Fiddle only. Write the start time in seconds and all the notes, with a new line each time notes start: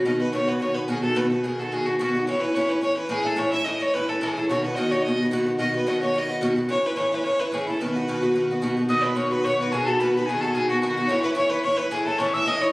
0.06 D#5
0.20 B4
0.34 C#5
0.49 B4
0.62 C#5
0.75 B4
0.89 G#4
1.02 A4
1.17 B4
1.31 B4
1.43 G#4
1.60 A4
1.73 G#4
1.86 F#4
1.97 F#4
2.27 C#5
2.41 B4
2.55 C#5
2.69 B4
2.82 C#5
2.97 B4
3.11 G#4
3.26 A4
3.39 C#5
3.53 E5
3.65 D#5
3.82 C#5
3.94 B4
4.09 A4
4.23 G#4
4.38 A4
4.49 C#5
4.65 B4
4.76 D#5
4.92 C#5
5.03 D#5
5.59 D#5
5.76 B4
5.88 D#5
6.02 C#5
6.18 D#5
6.71 C#5
6.86 B4
6.97 C#5
7.14 B4
7.24 C#5
7.40 B4
7.55 G#4
7.70 A4
7.80 B4
8.91 D#5
9.03 B4
9.16 C#5
9.31 B4
9.45 C#5
9.61 B4
9.72 G#4
9.87 A4
10.01 B4
10.17 B4
10.29 G#4
10.41 A4
10.55 G#4
10.70 F#4
10.81 F#4
11.08 C#5
11.23 B4
11.35 C#5
11.50 B4
11.63 C#5
11.77 B4
11.92 G#4
12.05 A4
12.19 C#5
12.35 E5
12.48 D#5
12.61 C#5